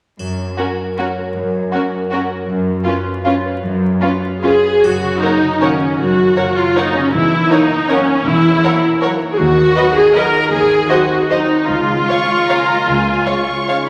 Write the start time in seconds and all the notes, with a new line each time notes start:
0.19 F#2, triangle
0.38 C#4
0.59 C#4 F#4 A#4
0.78 F#5
0.99 C#4 F#4 A#4 C#5
1.18 A#4
1.36 F#2
1.55 C#4
1.73 C#4 F#4 A#4
1.94 F#5
2.12 C#4 F#4 A#4 C#5
2.32 A#4
2.49 F#2
2.68 C#4
2.85 C#4 F4 B4
3.06 F5
3.25 C#4 F4 B4 C#5
3.45 B4
3.63 F#2
3.82 C#4
4.02 C#4 F4 B4
4.23 F5
4.43 C#4 F4 G#4 B4 C#5
4.64 B4
4.83 F#1 F#2 F#4, triangle
5.03 C#3
5.21 F#3 A#3 C#4 D#4 A#4 C#5 F#5
5.43 C#3
5.62 D#3 F#3 A#3 C#4 A#4 C#5 F#5
5.82 C#3
6.00 F#1 F#2 F#4
6.19 C#4
6.37 C#3 F#3 A#3 A#4 C#5 F#5
6.57 C#4 F4
6.77 F#3 A#3 D#4 A#4 C#5 F#5
6.96 C#3 C#4
7.14 E1 E2 E3 E4
7.32 A#3
7.51 F#3 A#3 C#4 D#4 A#4 C#5 F#5
7.71 A#3
7.90 F#3 A#3 B3 C#4 A#4 C#5 F#5
8.09 A#3
8.26 E1 E2 E3 E4
8.45 C#4
8.64 F#3 A#3 A#4 C#5 F#5
8.84 C#4
9.02 F#3 A#3 D#4 A#4 C#5 F#5
9.21 A#3
9.32 G#4
9.38 D#2 D#3 F#4
9.57 D#4
9.76 F#3 B3 B4 D#5 F#5
9.95 D#4 G#4
10.14 F#3 B3 F4 A#4 B4 D#5 F#5
10.34 D#4
10.51 D#2 D#3 G#4
10.70 D#4
10.90 F#3 C4 F#4 C5 D#5 F#5
11.10 D#4
11.30 F#3 C4 D#4 F4 C5 D#5 F#5
11.50 D#4
11.68 C#2 C#3 F4
11.88 G#3
12.07 G#3 C#4 C#5 F5 C#6
12.29 G#3
12.49 G#3 A#3 C#4 C#5 F5 A#5
12.69 G#3
12.88 C#2 C#3 G#5
13.07 C#4
13.27 G#3 C#4 C#5 F5 C#6
13.48 C#4
13.68 G#3 C#4 D#4 C#5 F5